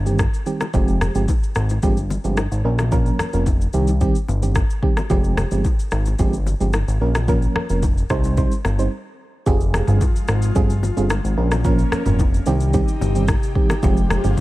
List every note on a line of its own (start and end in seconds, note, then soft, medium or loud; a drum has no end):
0.00 0.27 G1 medium
0.06 0.20 D#3 medium
0.06 0.20 G3 medium
0.06 0.21 C4 medium
0.06 0.21 G4 medium
0.06 shaker medium
0.19 kick medium
0.19 cross-stick loud
0.19 high bongo medium
0.19 shaker medium
0.34 shaker medium
0.46 0.62 D#3 medium
0.46 0.62 G3 medium
0.46 0.62 C4 medium
0.46 0.62 G4 medium
0.46 shaker soft
0.61 cross-stick medium
0.61 high bongo soft
0.61 low bongo medium
0.61 shaker soft
0.73 1.09 F1 loud
0.73 1.12 F3 medium
0.73 1.12 G#3 medium
0.73 1.12 C4 medium
0.73 1.12 G4 loud
0.73 kick loud
0.73 low conga medium
0.73 shaker medium
0.88 shaker soft
1.01 cross-stick loud
1.01 low conga medium
1.01 shaker medium
1.15 1.26 G1 medium
1.15 1.29 F3 medium
1.15 1.30 G#3 medium
1.15 1.30 C4 medium
1.15 1.30 G4 medium
1.15 shaker medium
1.28 kick medium
1.28 high bongo medium
1.28 shaker medium
1.43 shaker soft
1.55 1.79 G#1 medium
1.55 cross-stick medium
1.55 shaker medium
1.69 high bongo medium
1.69 shaker medium
1.83 2.18 G1 medium
1.83 1.98 F3 medium
1.83 1.98 G#3 medium
1.83 1.98 C4 medium
1.83 1.98 G4 loud
1.83 kick medium
1.83 low conga medium
1.83 shaker medium
1.97 shaker medium
2.10 low bongo medium
2.10 shaker medium
2.24 2.47 G1 medium
2.24 2.39 F3 medium
2.24 2.39 G#3 medium
2.24 2.39 C4 medium
2.24 2.39 G4 medium
2.24 shaker soft
2.37 cross-stick loud
2.37 high bongo medium
2.37 shaker medium
2.52 2.63 G#1 medium
2.52 shaker medium
2.64 3.11 A#1 loud
2.64 2.80 F3 medium
2.64 2.80 A#3 medium
2.64 2.80 C#4 medium
2.64 2.80 A#4 medium
2.79 cross-stick medium
2.79 low bongo medium
2.79 shaker soft
2.92 3.30 F3 medium
2.92 3.30 A#3 medium
2.92 3.30 C#4 medium
2.92 3.30 A#4 loud
2.92 kick loud
2.92 low conga medium
2.92 shaker medium
3.06 shaker soft
3.19 cross-stick loud
3.19 low conga medium
3.19 shaker medium
3.33 3.68 F1 medium
3.33 3.48 F3 medium
3.33 3.48 A#3 medium
3.33 3.48 C#4 medium
3.33 3.48 A#4 medium
3.33 shaker medium
3.46 kick medium
3.46 high bongo medium
3.46 shaker medium
3.61 shaker medium
3.73 4.09 C2 medium
3.73 3.99 D#3 medium
3.73 3.99 G3 medium
3.73 3.99 C4 medium
3.73 3.99 G4 medium
3.73 shaker medium
3.88 high bongo medium
3.88 shaker medium
4.01 4.16 D#3 medium
4.01 4.16 G3 medium
4.01 4.16 C4 medium
4.01 4.17 G4 loud
4.01 kick medium
4.01 low conga medium
4.01 shaker medium
4.15 shaker medium
4.28 4.63 G1 medium
4.28 low bongo medium
4.28 shaker medium
4.42 4.57 D#3 medium
4.42 4.57 G3 medium
4.42 4.57 C4 medium
4.42 4.57 G4 medium
4.42 shaker medium
4.55 kick medium
4.55 cross-stick loud
4.55 high bongo medium
4.55 shaker medium
4.70 shaker medium
4.82 4.98 D#3 medium
4.82 4.98 G3 medium
4.82 4.98 C4 medium
4.82 4.98 G4 medium
4.82 kick loud
4.97 cross-stick medium
4.97 low bongo medium
4.97 shaker soft
5.10 5.45 F1 loud
5.10 5.48 F3 loud
5.10 5.48 G#3 medium
5.10 5.48 C4 medium
5.10 5.48 G4 loud
5.10 kick loud
5.10 low conga medium
5.10 shaker medium
5.24 shaker soft
5.37 cross-stick loud
5.37 low conga medium
5.37 shaker medium
5.51 5.63 G1 medium
5.51 5.66 F3 medium
5.51 5.66 G#3 medium
5.51 5.66 C4 medium
5.51 5.66 G4 medium
5.51 shaker medium
5.65 kick medium
5.65 high bongo medium
5.65 shaker medium
5.79 shaker medium
5.91 6.15 G#1 medium
5.91 cross-stick medium
5.91 shaker medium
6.06 high bongo medium
6.06 shaker medium
6.19 6.54 G1 loud
6.19 6.34 F3 medium
6.19 6.35 G#3 medium
6.19 6.35 C4 medium
6.19 6.35 G4 loud
6.19 kick medium
6.19 low conga medium
6.19 shaker medium
6.33 shaker medium
6.46 low bongo medium
6.46 shaker medium
6.60 6.84 G1 medium
6.60 6.75 F3 medium
6.60 6.75 G#3 medium
6.60 6.75 C4 medium
6.60 6.75 G4 medium
6.60 shaker medium
6.73 cross-stick loud
6.73 high bongo medium
6.73 shaker medium
6.88 6.99 G#1 loud
6.88 shaker medium
7.01 7.47 A#1 loud
7.01 7.16 F3 medium
7.01 7.16 A#3 medium
7.01 7.17 C#4 medium
7.01 7.17 A#4 medium
7.15 cross-stick loud
7.15 low bongo medium
7.15 shaker soft
7.28 7.66 F3 medium
7.28 7.66 A#3 medium
7.28 7.66 C#4 medium
7.28 7.67 A#4 loud
7.28 kick loud
7.28 low conga medium
7.28 shaker medium
7.42 shaker soft
7.56 cross-stick loud
7.56 low conga medium
7.69 8.04 F1 medium
7.69 7.84 F3 medium
7.69 7.84 A#3 medium
7.69 7.84 C#4 medium
7.69 7.84 A#4 medium
7.69 shaker medium
7.83 kick medium
7.83 high bongo medium
7.83 shaker medium
7.98 shaker medium
8.10 8.45 C2 loud
8.10 8.35 G3 medium
8.10 8.35 C4 medium
8.10 8.35 D#4 medium
8.10 8.35 C5 loud
8.10 kick loud
8.10 cross-stick medium
8.10 shaker medium
8.24 high bongo medium
8.24 shaker medium
8.37 8.53 G3 medium
8.37 8.53 C4 medium
8.37 8.53 D#4 medium
8.37 8.53 C5 loud
8.37 kick medium
8.37 low conga medium
8.37 shaker medium
8.52 shaker medium
8.65 8.88 G1 medium
8.65 cross-stick medium
8.65 low bongo medium
8.65 shaker medium
8.79 8.92 G3 medium
8.79 8.92 C4 medium
8.79 8.92 D#4 medium
8.79 8.92 C5 medium
8.79 shaker medium
9.46 9.81 F1 loud
9.46 11.36 F3 medium
9.46 11.36 G#3 medium
9.46 9.84 C4 medium
9.46 9.85 F4 medium
9.46 11.36 F4 medium
9.46 9.84 G4 loud
9.46 9.85 G#4 loud
9.46 kick loud
9.46 low conga medium
9.46 shaker medium
9.61 shaker soft
9.74 cross-stick loud
9.74 low bongo soft
9.74 low conga medium
9.74 shaker medium
9.87 9.99 G1 medium
9.87 10.02 G3 medium
9.87 10.02 C4 medium
9.87 10.02 F4 medium
9.87 10.02 G#4 medium
9.87 mid tom loud
9.87 shaker medium
10.01 kick loud
10.01 high bongo medium
10.01 shaker medium
10.16 shaker medium
10.28 10.51 G#1 loud
10.28 cross-stick loud
10.28 shaker medium
10.42 shaker medium
10.55 10.91 G1 medium
10.55 10.71 G3 medium
10.55 10.71 C4 medium
10.55 10.71 F4 medium
10.55 10.71 G#4 loud
10.55 kick medium
10.55 low conga medium
10.55 shaker medium
10.70 shaker medium
10.83 low bongo medium
10.83 shaker medium
10.97 11.20 G1 medium
10.97 11.11 G3 medium
10.97 11.11 C4 medium
10.97 11.11 F4 medium
10.97 11.12 G#4 medium
10.97 shaker medium
11.10 cross-stick loud
11.10 high bongo medium
11.10 shaker medium
11.24 11.35 G#1 medium
11.24 shaker medium
11.37 11.84 A#1 loud
11.37 11.53 F3 medium
11.37 12.45 F3 medium
11.37 11.53 A#3 medium
11.37 12.46 A#3 medium
11.37 11.53 C#4 medium
11.37 12.46 C#4 medium
11.37 11.53 A#4 medium
11.52 cross-stick medium
11.52 low bongo medium
11.52 shaker medium
11.64 12.03 F3 loud
11.64 12.03 A#3 medium
11.64 12.03 C#4 medium
11.64 12.03 A#4 loud
11.64 kick loud
11.64 low conga medium
11.64 shaker medium
11.79 shaker soft
11.92 cross-stick loud
11.92 low bongo soft
11.92 low conga medium
11.92 shaker medium
12.06 12.40 F1 medium
12.06 12.20 F3 medium
12.06 12.20 A#3 medium
12.06 12.21 C#4 medium
12.06 12.21 A#4 medium
12.06 mid tom loud
12.06 shaker medium
12.19 kick loud
12.19 high bongo medium
12.19 shaker medium
12.34 shaker medium
12.46 12.82 C2 loud
12.46 13.82 C3 medium
12.46 12.72 D#3 loud
12.46 12.72 G3 medium
12.46 12.72 C4 medium
12.46 13.82 D#4 medium
12.46 14.40 G4 medium
12.46 12.72 G4 loud
12.46 shaker medium
12.60 shaker medium
12.74 12.89 D#3 loud
12.74 12.89 G3 medium
12.74 12.89 C4 medium
12.74 12.89 G4 loud
12.74 kick medium
12.74 low conga medium
12.74 shaker medium
12.88 shaker medium
13.01 13.36 G1 medium
13.01 low bongo medium
13.01 shaker medium
13.15 13.29 D#3 medium
13.15 13.30 G3 medium
13.15 13.30 C4 medium
13.15 13.30 G4 medium
13.15 shaker medium
13.28 kick loud
13.28 cross-stick loud
13.28 high bongo medium
13.28 shaker medium
13.43 shaker medium
13.55 13.71 D#3 medium
13.55 13.71 G3 medium
13.55 13.71 C4 medium
13.55 13.71 G4 medium
13.55 kick loud
13.70 cross-stick loud
13.70 low bongo medium
13.70 shaker medium
13.82 14.18 F1 loud
13.82 14.21 F3 loud
13.82 14.21 G#3 medium
13.82 14.40 G#3 medium
13.82 14.21 C4 medium
13.82 14.40 F4 medium
13.82 14.21 G4 loud
13.82 kick loud
13.82 low conga medium
13.82 shaker medium
13.97 shaker soft
14.10 cross-stick loud
14.10 low bongo soft
14.10 low conga medium
14.10 shaker medium
14.24 14.35 G1 medium
14.24 14.39 F3 medium
14.24 14.39 G#3 medium
14.24 14.39 C4 medium
14.24 14.39 G4 medium
14.24 mid tom loud
14.24 shaker medium
14.37 shaker medium